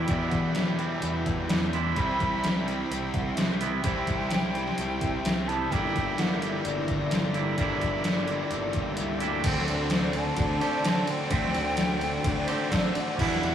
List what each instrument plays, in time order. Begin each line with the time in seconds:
Already playing: overdriven electric guitar E3 E4, clean electric guitar E4, string machine E4 D5 G5 B5, flute G5
0.08 clean electric guitar E2 B2 E3 G3 D4 E4, overdriven electric guitar E2 B2 E3 B3, picked electric bass E2, kick, closed hi-hat
0.30 picked electric bass E2, flute F#5, kick, closed hi-hat
0.52 flute E5, snare, closed hi-hat
0.79 overdriven electric guitar E2 B2 E3, closed hi-hat
1.02 picked electric bass E2, closed hi-hat
1.26 picked electric bass E2, kick, closed hi-hat
1.49 overdriven electric guitar E2 B2 E3, picked electric bass E2, snare, closed hi-hat
1.73 clean electric guitar B2 E3 G3 D4 E4, flute C6, closed hi-hat
1.77 clean electric guitar E2
1.96 picked electric bass C2, overdriven electric guitar C3 G3 C4, clean electric guitar C3 E3 G3 E4, string machine C5, flute B5, kick, closed hi-hat
2.20 picked electric bass C2, kick, closed hi-hat
2.44 snare, closed hi-hat
2.66 overdriven electric guitar C3 G3 C4, closed hi-hat
2.90 picked electric bass C2, flute G5, closed hi-hat
3.13 picked electric bass C2, flute F#5, kick, closed hi-hat
3.35 picked electric bass C2, overdriven electric guitar C3 G3, flute E5, snare, closed hi-hat
3.39 overdriven electric guitar C4
3.59 clean electric guitar E3 G3 B3 E4, flute G5, closed hi-hat
3.64 clean electric guitar C3
3.83 picked electric bass C2, overdriven electric guitar C3 G3 C4, clean electric guitar C3 E3 G3 E4, string machine G5, kick, closed hi-hat
4.07 picked electric bass C2, kick, closed hi-hat
4.31 snare, closed hi-hat
4.54 overdriven electric guitar C3 G3 C4, closed hi-hat
4.68 snare
4.78 picked electric bass C2, closed hi-hat
5.01 picked electric bass C2, kick, closed hi-hat
5.24 picked electric bass C2, overdriven electric guitar C3 G3 C4, snare, closed hi-hat
5.48 clean electric guitar C3 E3 G3 B3 E4, flute A5, closed hi-hat
5.71 picked electric bass G1, overdriven electric guitar G2 D3 G3, clean electric guitar G3 A#3 D4 E4, string machine D5 G5 A#5, flute G5, kick, closed hi-hat
5.95 picked electric bass G1, kick, closed hi-hat
6.18 flute F#5, snare, closed hi-hat
6.40 overdriven electric guitar G2 D3 G3, flute E5, closed hi-hat
6.65 picked electric bass G1, flute D5, closed hi-hat
6.88 picked electric bass G1, kick, closed hi-hat
7.11 picked electric bass G1, overdriven electric guitar G2 D3 G3, snare, closed hi-hat
7.34 clean electric guitar G3 A#3 D4 E4, closed hi-hat
7.56 picked electric bass G1, overdriven electric guitar G2 D3 G3, clean electric guitar G3 A#3 D4, kick, closed hi-hat
7.61 clean electric guitar E4
7.81 picked electric bass G1, kick, closed hi-hat
8.04 snare, closed hi-hat
8.28 overdriven electric guitar G2 D3 G3, closed hi-hat
8.51 picked electric bass G1, closed hi-hat
8.73 picked electric bass G1, kick, closed hi-hat
8.97 picked electric bass C2, overdriven electric guitar G2 D3 G3, flute E5, closed hi-hat
9.19 clean electric guitar D4 E4, flute G5, closed hi-hat
9.23 picked electric bass D2, clean electric guitar G3 A#3
9.43 picked electric bass D2, clean electric guitar D3 A3 C4, overdriven electric guitar D3 A3 D4 F#4, string machine D4 C5 D5 A5, kick, crash, ride
9.57 snare
9.68 picked electric bass D2, ride
9.90 snare, ride
10.13 flute A5, ride
10.37 picked electric bass D2, overdriven electric guitar D3 A3 D4, kick, ride
10.61 clean electric guitar D3 A3 C4 G4, overdriven electric guitar F#4, ride
10.84 clean electric guitar D3 A3 C4, overdriven electric guitar F#4, snare, ride
11.07 flute G5, ride
11.30 picked electric bass D2, overdriven electric guitar D3 A3 D4 F#4, clean electric guitar D3 A3 C4, kick, ride
11.44 snare
11.54 picked electric bass D2, ride
11.77 snare, ride
12.01 ride
12.24 picked electric bass D2, overdriven electric guitar D3 A3 D4, kick, ride
12.47 clean electric guitar D3 A3 C4 G4, overdriven electric guitar F#4, ride
12.71 clean electric guitar D3 A3 C4, overdriven electric guitar F#4, kick, snare, ride
12.77 flute D5
12.95 ride
13.00 flute F#5
13.17 overdriven electric guitar E2 B2 E3 B3, clean electric guitar E2 B2 E3 G3 D4 E4, picked electric bass E2, string machine E5, kick, crash
13.22 string machine G4 B5
13.33 snare
13.43 picked electric bass E2, ride